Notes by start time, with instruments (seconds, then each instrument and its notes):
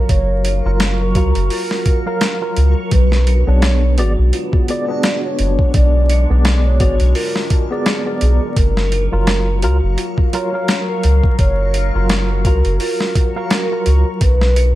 Already playing: tine electric piano F#3 A#4 F5, ambient pad F#3 A#4 F5, synth texture F#3
0.09 sub bass F#1, soft synth lead C#5, kick, closed hi-hat
0.45 music box D#4, closed hi-hat
0.65 sub bass F#1, tine electric piano F#3 F4 A#4
0.80 music box A#4, snare, closed hi-hat
1.00 soft synth lead A#4
1.15 sub bass C#2, tine electric piano F#3 F4 A#4, music box F#4, kick, closed hi-hat
1.35 sub bass F#1, closed hi-hat
1.50 music box F4, soft synth lead A#4, open hi-hat
1.71 snare
1.86 kick, closed hi-hat
2.06 tine electric piano F#3 A#4 F5, soft synth lead A#4
2.21 snare, closed hi-hat
2.41 tine electric piano F#3 F4 A#4
2.56 sub bass C#2, closed hi-hat
2.91 sub bass B1, ambient pad G#3 B3 D4, soft synth lead B4, kick, closed hi-hat
3.12 snare
3.27 music box D4, closed hi-hat
3.47 sub bass B1, tine electric piano B3 D4 G#4, soft synth lead C#5
3.62 music box A#4, snare, closed hi-hat
3.98 sub bass G#1, tine electric piano B3 G#4 D5, music box F#4, closed hi-hat
4.18 sub bass B1
4.33 music box F4, closed hi-hat
4.53 kick
4.68 tine electric piano B3 G#4 D5, soft synth lead D5, closed hi-hat
4.88 tine electric piano B3 D4 G#4
5.03 snare, closed hi-hat
5.25 soft synth lead C#5
5.39 sub bass F#1, closed hi-hat
5.59 kick
5.74 sub bass B1, ambient pad A#4, soft synth lead D5, kick, closed hi-hat
6.09 music box D4, closed hi-hat
6.30 sub bass B1, tine electric piano B3 G#4 D5
6.45 music box A#4, snare, closed hi-hat
6.65 soft synth lead C#5
6.80 sub bass G#1, tine electric piano B3 G#4 D5, music box F#4, kick, closed hi-hat
7.00 sub bass B1, closed hi-hat
7.15 music box F4, soft synth lead A#4, open hi-hat
7.36 snare
7.50 kick, closed hi-hat
7.71 tine electric piano B3 G#4 D5, soft synth lead G#4
7.86 music box D4, snare, closed hi-hat
8.06 tine electric piano B3 G#4 D5
8.21 sub bass B1, closed hi-hat
8.56 sub bass F#1, ambient pad F#3 F5, soft synth lead A#4, kick, closed hi-hat
8.77 snare
8.92 music box D#4, closed hi-hat
9.11 sub bass F#1, tine electric piano F#3 F4 A#4, soft synth lead A#4
9.27 music box A#4, snare, closed hi-hat
9.62 sub bass C#2, tine electric piano F#3 F4 A#4, music box F#4, closed hi-hat
9.83 sub bass F#1
9.97 music box F4, closed hi-hat
10.18 kick
10.32 tine electric piano F#3 F4 A#4, soft synth lead C#5, closed hi-hat
10.53 tine electric piano F#3 A#4 F5
10.68 snare, closed hi-hat
10.89 soft synth lead A#4
11.03 sub bass C#2, closed hi-hat
11.24 kick
11.39 sub bass F#1, soft synth lead C#5, kick, closed hi-hat
11.74 music box D#4, closed hi-hat
11.95 sub bass F#1, tine electric piano F#3 F4 A#4
12.10 music box A#4, snare, closed hi-hat
12.30 soft synth lead A#4
12.45 sub bass C#2, tine electric piano F#3 F4 A#4, music box F#4, kick, closed hi-hat
12.65 sub bass F#1, closed hi-hat
12.80 music box F4, soft synth lead A#4, open hi-hat
13.00 snare
13.15 kick, closed hi-hat
13.36 tine electric piano F#3 A#4 F5, soft synth lead A#4
13.50 snare, closed hi-hat
13.72 tine electric piano F#3 F4 A#4
13.86 sub bass C#2, closed hi-hat
14.21 sub bass B1, ambient pad G#3 B3 D4, soft synth lead B4, kick, closed hi-hat
14.41 snare
14.56 music box D4, closed hi-hat